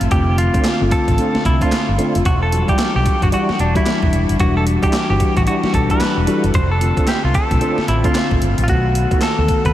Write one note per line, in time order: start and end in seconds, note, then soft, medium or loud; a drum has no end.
0.00 0.09 G1 medium
0.00 0.10 D3 medium
0.00 0.11 A3 medium
0.00 0.11 C4 medium
0.00 0.12 F4 medium
0.00 closed hi-hat medium
0.10 0.47 F1 loud
0.10 0.61 D3 medium
0.10 0.61 A3 medium
0.10 0.62 C4 medium
0.10 0.62 F4 medium
0.10 0.36 G4 loud
0.10 kick loud
0.10 closed hi-hat medium
0.38 0.93 F4 loud
0.38 closed hi-hat medium
0.54 0.67 A3 medium
0.54 0.68 C4 medium
0.54 0.68 D4 medium
0.54 0.68 F4 medium
0.54 kick medium
0.54 closed hi-hat medium
0.64 snare loud
0.64 clap medium
0.64 closed hi-hat medium
0.80 0.90 G1 medium
0.80 1.17 D3 medium
0.80 1.18 A3 medium
0.80 1.18 C4 medium
0.80 1.18 F4 medium
0.91 1.46 A4 loud
0.91 kick medium
0.91 closed hi-hat medium
1.08 1.17 A1 medium
1.08 kick medium
1.08 closed hi-hat medium
1.18 1.36 A3 medium
1.18 1.37 C4 medium
1.18 1.37 D4 medium
1.18 1.37 F4 medium
1.18 closed hi-hat medium
1.34 1.83 D3 medium
1.34 1.83 A3 medium
1.34 1.83 C4 medium
1.34 1.84 F4 medium
1.34 muted fretless electric bass stroke soft
1.34 snare medium
1.45 1.59 C2 medium
1.45 1.62 E4 medium
1.45 kick medium
1.45 closed hi-hat medium
1.61 1.75 A3 medium
1.61 1.75 C4 medium
1.61 1.75 D4 medium
1.61 1.75 F4 medium
1.61 2.22 F4 medium
1.61 kick medium
1.61 closed hi-hat medium
1.72 muted fretless electric bass stroke soft
1.72 snare loud
1.72 clap medium
1.72 closed hi-hat medium
1.88 1.97 G1 medium
1.98 2.25 D3 medium
1.98 2.17 A3 medium
1.98 2.25 A3 medium
1.98 2.17 C4 medium
1.98 2.25 C4 medium
1.98 2.17 D4 medium
1.98 2.17 F4 medium
1.98 2.26 F4 medium
1.98 closed hi-hat medium
2.15 2.24 F1 medium
2.15 closed hi-hat medium
2.25 2.62 E1 loud
2.25 2.42 F#4 loud
2.25 kick loud
2.25 closed hi-hat medium
2.43 2.67 A4 medium
2.51 3.02 E3 medium
2.51 2.60 F#3 medium
2.51 3.03 D4 medium
2.51 3.03 F#4 medium
2.51 closed hi-hat medium
2.58 3.06 G3 medium
2.68 2.82 G3 medium
2.68 2.82 D4 medium
2.68 2.82 E4 medium
2.68 2.82 F#4 medium
2.68 2.95 G4 medium
2.68 kick medium
2.68 closed hi-hat medium
2.79 snare loud
2.79 clap medium
2.79 closed hi-hat medium
2.95 3.04 B1 medium
2.95 3.21 G4 medium
3.06 kick medium
3.06 closed hi-hat medium
3.22 3.31 G1 medium
3.22 3.59 E3 medium
3.22 3.59 G3 medium
3.22 3.59 D4 medium
3.22 3.59 F#4 medium
3.22 3.28 F#4 medium
3.22 kick medium
3.22 closed hi-hat medium
3.32 3.51 G3 medium
3.32 3.51 D4 medium
3.32 3.51 E4 medium
3.32 3.51 F#4 medium
3.32 3.58 F#4 medium
3.32 closed hi-hat medium
3.49 muted fretless electric bass stroke soft
3.49 snare medium
3.59 3.73 E1 medium
3.59 3.75 D4 medium
3.59 closed hi-hat medium
3.75 4.24 E3 medium
3.75 3.89 G3 medium
3.75 4.24 G3 medium
3.75 3.89 D4 medium
3.75 4.25 D4 medium
3.75 3.89 E4 medium
3.75 4.25 E4 medium
3.75 4.36 E4 medium
3.75 3.89 F#4 medium
3.75 kick medium
3.75 closed hi-hat medium
3.86 snare loud
3.86 clap medium
3.86 closed hi-hat medium
4.02 4.11 E1 medium
4.02 kick medium
4.13 4.27 E1 medium
4.13 closed hi-hat medium
4.29 4.38 F#1 medium
4.29 closed hi-hat medium
4.39 4.76 E1 loud
4.39 4.90 E3 medium
4.39 4.90 G3 medium
4.39 4.90 D4 medium
4.39 4.55 F#4 loud
4.39 4.91 F#4 medium
4.39 kick loud
4.39 closed hi-hat medium
4.57 4.64 A4 medium
4.67 closed hi-hat medium
4.83 4.96 G3 medium
4.83 4.96 D4 medium
4.83 4.96 E4 medium
4.83 4.96 F#4 medium
4.83 5.09 G4 medium
4.83 kick medium
4.83 closed hi-hat medium
4.93 snare loud
4.93 clap medium
4.93 closed hi-hat medium
5.09 5.18 G1 medium
5.09 5.46 E3 medium
5.09 5.46 G3 medium
5.09 5.47 D4 medium
5.09 5.47 F#4 medium
5.09 5.37 G4 medium
5.20 kick medium
5.20 closed hi-hat medium
5.37 5.45 A1 medium
5.37 5.42 F#4 medium
5.37 kick medium
5.37 closed hi-hat medium
5.47 5.65 G3 medium
5.47 5.65 D4 medium
5.47 5.65 E4 medium
5.47 5.65 F#4 medium
5.47 5.74 F#4 loud
5.47 closed hi-hat medium
5.63 6.12 E3 medium
5.63 6.12 G3 medium
5.63 6.12 D4 medium
5.63 6.12 F#4 medium
5.63 muted fretless electric bass stroke soft
5.63 snare medium
5.74 5.87 B1 medium
5.74 5.91 A4 medium
5.74 kick medium
5.74 closed hi-hat medium
5.90 6.03 G3 medium
5.90 6.03 D4 medium
5.90 6.03 E4 medium
5.90 6.04 F#4 medium
5.90 6.55 B4 medium
5.90 kick medium
5.90 closed hi-hat medium
6.00 muted fretless electric bass stroke soft
6.00 snare loud
6.00 clap medium
6.00 closed hi-hat medium
6.17 6.26 E1 medium
6.27 6.54 E3 medium
6.27 6.45 G3 medium
6.27 6.54 G3 medium
6.27 6.45 D4 medium
6.27 6.54 D4 medium
6.27 6.46 E4 medium
6.27 6.46 F#4 medium
6.27 6.54 A4 loud
6.27 closed hi-hat medium
6.44 6.52 F#1 medium
6.44 closed hi-hat medium
6.54 6.90 F1 loud
6.54 6.71 C5 loud
6.54 kick loud
6.54 closed hi-hat medium
6.72 7.06 A4 medium
6.80 7.31 D3 medium
6.80 7.31 A3 medium
6.80 7.31 C4 medium
6.80 7.32 F4 medium
6.80 closed hi-hat medium
6.97 7.10 C4 medium
6.97 7.10 D4 medium
6.97 7.11 F4 medium
6.97 7.11 A4 medium
6.97 kick medium
6.97 closed hi-hat medium
7.07 7.23 G4 medium
7.07 snare loud
7.07 clap medium
7.07 closed hi-hat medium
7.24 7.33 C2 medium
7.24 7.35 F4 medium
7.34 7.88 A4 loud
7.34 kick medium
7.34 closed hi-hat medium
7.50 7.60 B1 medium
7.50 7.87 D3 medium
7.50 7.87 A3 medium
7.50 7.88 C4 medium
7.50 7.88 F4 medium
7.50 kick medium
7.50 closed hi-hat medium
7.61 7.79 C4 medium
7.61 7.79 D4 medium
7.61 7.80 F4 medium
7.61 7.80 A4 medium
7.61 closed hi-hat medium
7.78 muted fretless electric bass stroke soft
7.78 snare medium
7.88 8.02 A1 medium
7.88 8.05 E4 medium
7.88 closed hi-hat medium
8.04 8.53 D3 medium
8.04 8.53 A3 medium
8.04 8.18 C4 medium
8.04 8.53 C4 medium
8.04 8.18 D4 medium
8.04 8.18 F4 medium
8.04 8.53 F4 medium
8.04 8.62 F4 medium
8.04 8.18 A4 medium
8.04 kick medium
8.04 closed hi-hat medium
8.15 snare loud
8.15 clap medium
8.15 closed hi-hat medium
8.31 8.40 A1 medium
8.31 kick medium
8.42 8.55 G1 medium
8.42 closed hi-hat medium
8.58 8.67 A1 medium
8.58 closed hi-hat medium
8.64 8.69 F4 medium
8.68 9.05 B1 medium
8.68 9.19 D#3 medium
8.68 9.19 A3 medium
8.68 9.19 B3 medium
8.68 9.19 F#4 medium
8.68 9.24 F#4 medium
8.68 kick loud
8.68 closed hi-hat medium
8.95 closed hi-hat medium
9.11 9.25 B3 medium
9.11 9.25 D#4 medium
9.11 9.25 F#4 medium
9.11 9.25 A4 medium
9.11 kick loud
9.11 closed hi-hat medium
9.21 9.63 A4 medium
9.21 snare loud
9.21 clap loud
9.21 closed hi-hat medium
9.38 9.47 D2 medium
9.38 9.73 D#3 medium
9.38 9.73 A3 medium
9.38 9.73 B3 medium
9.38 9.73 A4 medium
9.48 kick medium
9.48 closed hi-hat medium
9.65 9.73 D#2 medium
9.65 9.73 B4 medium
9.65 kick medium
9.65 closed hi-hat soft